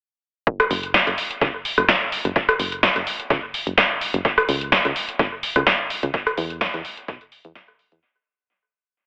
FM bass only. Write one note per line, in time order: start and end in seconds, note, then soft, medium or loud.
0.71 1.01 F#1 loud
1.07 1.15 F#1 medium
1.41 1.50 C#2 medium
1.78 1.85 F#1 loud
2.25 2.33 F#1 loud
2.60 2.90 F#1 medium
2.96 3.03 F#1 medium
3.30 3.39 C#2 loud
3.67 3.74 F#1 medium
4.14 4.22 F#1 loud
4.49 4.79 C#2 medium
4.85 4.92 C#2 medium
5.19 5.28 G#1 loud
5.56 5.63 C#2 medium
6.03 6.11 C#2 loud
6.38 6.68 E2 loud
6.74 6.81 E2 medium
7.08 7.17 B1 loud
7.45 7.52 E2 loud
7.92 8.00 E2 medium